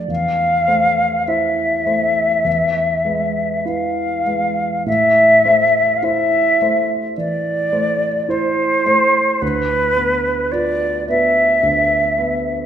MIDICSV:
0, 0, Header, 1, 3, 480
1, 0, Start_track
1, 0, Key_signature, 0, "minor"
1, 0, Tempo, 1188119
1, 36, Time_signature, 4, 2, 24, 8
1, 2436, Tempo, 1129944
1, 3876, Tempo, 1102941
1, 5286, End_track
2, 0, Start_track
2, 0, Title_t, "Flute"
2, 0, Program_c, 0, 73
2, 38, Note_on_c, 0, 77, 67
2, 516, Note_on_c, 0, 76, 51
2, 522, Note_off_c, 0, 77, 0
2, 1476, Note_on_c, 0, 77, 52
2, 1482, Note_off_c, 0, 76, 0
2, 1962, Note_off_c, 0, 77, 0
2, 1964, Note_on_c, 0, 76, 68
2, 2408, Note_on_c, 0, 77, 41
2, 2414, Note_off_c, 0, 76, 0
2, 2441, Note_on_c, 0, 76, 61
2, 2448, Note_off_c, 0, 77, 0
2, 2805, Note_off_c, 0, 76, 0
2, 2918, Note_on_c, 0, 74, 66
2, 3398, Note_on_c, 0, 72, 65
2, 3405, Note_off_c, 0, 74, 0
2, 3873, Note_on_c, 0, 71, 71
2, 3880, Note_off_c, 0, 72, 0
2, 4352, Note_on_c, 0, 74, 67
2, 4358, Note_off_c, 0, 71, 0
2, 4596, Note_off_c, 0, 74, 0
2, 4603, Note_on_c, 0, 76, 66
2, 5286, Note_off_c, 0, 76, 0
2, 5286, End_track
3, 0, Start_track
3, 0, Title_t, "Grand piano"
3, 0, Program_c, 1, 0
3, 0, Control_c, 1, 64, 127
3, 0, Note_on_c, 1, 57, 27
3, 0, Note_on_c, 1, 62, 29
3, 0, Note_on_c, 1, 74, 27
3, 33, Note_on_c, 1, 40, 32
3, 44, Note_off_c, 1, 62, 0
3, 44, Control_c, 1, 64, 0
3, 45, Note_off_c, 1, 74, 0
3, 47, Note_off_c, 1, 57, 0
3, 106, Control_c, 1, 64, 127
3, 274, Note_on_c, 1, 72, 26
3, 275, Note_on_c, 1, 57, 24
3, 500, Note_off_c, 1, 72, 0
3, 501, Note_off_c, 1, 57, 0
3, 516, Note_on_c, 1, 64, 26
3, 518, Note_on_c, 1, 72, 27
3, 739, Note_off_c, 1, 64, 0
3, 740, Note_off_c, 1, 72, 0
3, 751, Note_on_c, 1, 57, 26
3, 755, Note_on_c, 1, 72, 27
3, 975, Note_off_c, 1, 57, 0
3, 976, Note_off_c, 1, 40, 0
3, 976, Note_off_c, 1, 72, 0
3, 988, Note_on_c, 1, 40, 34
3, 1001, Control_c, 1, 64, 0
3, 1074, Control_c, 1, 64, 127
3, 1232, Note_on_c, 1, 71, 25
3, 1233, Note_on_c, 1, 56, 26
3, 1461, Note_off_c, 1, 56, 0
3, 1461, Note_off_c, 1, 71, 0
3, 1475, Note_on_c, 1, 71, 28
3, 1477, Note_on_c, 1, 64, 25
3, 1707, Note_off_c, 1, 71, 0
3, 1708, Note_off_c, 1, 64, 0
3, 1722, Note_on_c, 1, 56, 24
3, 1725, Note_on_c, 1, 71, 26
3, 1946, Note_off_c, 1, 40, 0
3, 1948, Note_off_c, 1, 56, 0
3, 1949, Note_off_c, 1, 71, 0
3, 1965, Note_on_c, 1, 45, 36
3, 1973, Control_c, 1, 64, 0
3, 2051, Control_c, 1, 64, 127
3, 2201, Note_on_c, 1, 57, 27
3, 2203, Note_on_c, 1, 72, 29
3, 2419, Note_off_c, 1, 57, 0
3, 2419, Note_off_c, 1, 72, 0
3, 2435, Note_on_c, 1, 64, 28
3, 2440, Note_on_c, 1, 72, 33
3, 2662, Note_off_c, 1, 64, 0
3, 2665, Note_off_c, 1, 72, 0
3, 2686, Note_on_c, 1, 57, 31
3, 2688, Note_on_c, 1, 72, 36
3, 2903, Note_off_c, 1, 45, 0
3, 2906, Note_off_c, 1, 57, 0
3, 2907, Note_off_c, 1, 72, 0
3, 2923, Note_on_c, 1, 52, 33
3, 3155, Note_on_c, 1, 57, 32
3, 3158, Note_on_c, 1, 72, 33
3, 3303, Note_off_c, 1, 52, 0
3, 3379, Note_off_c, 1, 57, 0
3, 3381, Note_off_c, 1, 72, 0
3, 3395, Note_on_c, 1, 64, 34
3, 3398, Note_on_c, 1, 72, 36
3, 3619, Note_off_c, 1, 64, 0
3, 3621, Note_off_c, 1, 72, 0
3, 3637, Note_on_c, 1, 57, 31
3, 3639, Note_on_c, 1, 72, 35
3, 3858, Note_off_c, 1, 57, 0
3, 3859, Note_off_c, 1, 72, 0
3, 3875, Note_on_c, 1, 38, 43
3, 3881, Control_c, 1, 64, 0
3, 3954, Control_c, 1, 64, 127
3, 4111, Note_on_c, 1, 59, 32
3, 4114, Note_on_c, 1, 71, 33
3, 4339, Note_off_c, 1, 59, 0
3, 4341, Note_off_c, 1, 71, 0
3, 4358, Note_on_c, 1, 65, 36
3, 4361, Note_on_c, 1, 71, 39
3, 4581, Note_off_c, 1, 65, 0
3, 4583, Note_off_c, 1, 71, 0
3, 4600, Note_on_c, 1, 71, 42
3, 4602, Note_on_c, 1, 59, 37
3, 4822, Note_off_c, 1, 38, 0
3, 4822, Note_off_c, 1, 71, 0
3, 4823, Note_off_c, 1, 59, 0
3, 4837, Note_on_c, 1, 38, 41
3, 5077, Note_on_c, 1, 59, 36
3, 5079, Note_on_c, 1, 71, 35
3, 5286, Note_off_c, 1, 38, 0
3, 5286, Note_off_c, 1, 59, 0
3, 5286, Note_off_c, 1, 71, 0
3, 5286, End_track
0, 0, End_of_file